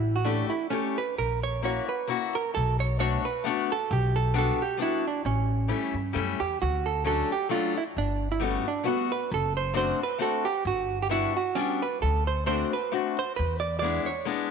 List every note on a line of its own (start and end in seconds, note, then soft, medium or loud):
0.00 0.40 A1 medium
0.00 0.16 E4 medium
0.16 0.27 F#4 medium
0.25 0.51 A3 medium
0.25 0.51 C#4 soft
0.25 0.49 D4 medium
0.25 0.51 E4 soft
0.25 0.52 G4 medium
0.50 0.70 E4 medium
0.70 0.97 A3 medium
0.70 0.98 C#4 medium
0.70 0.97 C#4 soft
0.70 0.97 E4 soft
0.70 0.98 G4 medium
0.98 1.18 B4 medium
1.18 1.78 A#1 medium
1.18 1.43 A#4 medium
1.43 1.64 C#5 medium
1.62 1.88 A#3 soft
1.62 1.89 C#4 soft
1.62 1.89 E4 soft
1.62 1.89 F#4 medium
1.62 1.88 C#5 medium
1.89 2.08 B4 medium
2.07 2.33 A#3 medium
2.07 2.34 C#4 soft
2.07 2.34 E4 soft
2.07 2.35 F#4 medium
2.35 2.54 A#4 medium
2.55 3.15 B1 medium
2.55 2.80 A4 medium
2.80 2.99 C#5 medium
2.99 3.24 A3 soft
2.99 3.25 B3 soft
2.99 3.25 D4 soft
2.99 3.25 F#4 medium
2.99 3.23 C#5 loud
3.25 3.44 B4 medium
3.44 3.69 A3 medium
3.44 3.70 B3 medium
3.44 3.70 D4 medium
3.44 3.70 F#4 medium
3.72 3.92 A4 medium
3.91 4.48 B1 loud
3.91 4.17 G4 medium
4.16 4.36 A4 medium
4.34 4.59 G3 medium
4.34 4.59 B3 soft
4.34 4.59 D4 soft
4.34 4.60 F#4 medium
4.38 4.62 A4 medium
4.62 4.79 G4 medium
4.77 5.03 G3 medium
4.77 5.03 B3 soft
4.77 5.03 D4 soft
4.77 5.04 F#4 medium
4.82 5.06 E4 medium
5.07 5.25 D4 medium
5.25 5.70 A1 medium
5.25 6.44 C#4 medium
5.68 5.94 G3 soft
5.68 5.94 A3 soft
5.68 5.94 C#4 soft
5.68 5.94 E4 medium
5.94 6.13 G2 medium
6.13 6.38 F#2 soft
6.13 6.39 G3 medium
6.13 6.39 A3 medium
6.13 6.40 C#4 medium
6.13 6.40 E4 medium
6.40 6.59 E2 medium
6.40 6.61 G4 medium
6.62 7.21 D2 medium
6.62 6.87 F#4 medium
6.86 7.06 A4 medium
7.04 7.30 F#3 medium
7.04 7.30 A3 soft
7.04 7.30 C#4 soft
7.04 7.31 D4 medium
7.04 7.29 A4 medium
7.32 7.51 G4 medium
7.49 7.75 F#3 medium
7.49 7.75 A3 soft
7.49 7.75 C#4 soft
7.49 7.76 D4 medium
7.49 7.77 F4 medium
7.78 7.83 E4 medium
7.96 8.55 G1 medium
7.96 8.31 D4 medium
8.32 8.44 E4 medium
8.40 8.65 G3 medium
8.40 8.65 A3 soft
8.40 8.66 B3 soft
8.40 8.67 C#4 medium
8.40 8.66 F#4 soft
8.68 8.87 D4 medium
8.84 9.09 G3 medium
8.84 9.09 A3 soft
8.84 9.10 B3 medium
8.84 9.12 B3 medium
8.84 9.10 F#4 medium
9.12 9.32 B4 medium
9.31 9.90 F#1 medium
9.31 9.56 A4 medium
9.57 9.76 C5 medium
9.73 9.99 A3 medium
9.73 10.00 C4 soft
9.73 10.00 D4 soft
9.73 10.00 F#4 medium
9.73 10.02 C5 medium
10.03 10.21 B4 medium
10.18 10.45 A3 medium
10.18 10.45 C4 medium
10.18 10.45 D4 soft
10.18 10.46 F#4 medium
10.18 10.47 A4 medium
10.45 10.67 G4 medium
10.65 11.25 G1 medium
10.65 11.02 F#4 medium
11.02 11.11 G4 medium
11.09 11.36 G3 soft
11.09 11.36 B3 soft
11.09 11.36 D4 soft
11.09 11.36 E4 medium
11.09 11.36 F#4 medium
11.37 11.58 F#4 medium
11.55 11.81 G3 medium
11.55 11.82 B3 medium
11.55 11.82 C#4 medium
11.55 11.82 D4 soft
11.55 11.82 F#4 soft
11.82 12.02 B4 medium
12.02 12.62 D2 medium
12.02 12.27 A4 medium
12.27 12.46 C5 medium
12.46 12.72 A3 medium
12.46 12.73 C4 soft
12.46 12.73 D4 soft
12.46 12.73 F#4 medium
12.46 12.73 C5 medium
12.73 12.92 B4 medium
12.92 13.18 A3 soft
12.92 13.18 C4 soft
12.92 13.18 D4 soft
12.92 13.18 F#4 medium
13.19 13.36 C5 medium
13.36 13.97 E2 medium
13.36 13.59 B4 medium
13.60 13.78 D5 medium
13.79 14.07 G#3 medium
13.79 14.07 B3 soft
13.79 14.06 D5 medium
13.83 14.08 D4 soft
13.83 14.08 E4 medium
14.06 14.26 C#5 medium
14.25 14.51 G#3 medium
14.25 14.51 B3 medium
14.25 14.51 D4 medium
14.25 14.51 E4 medium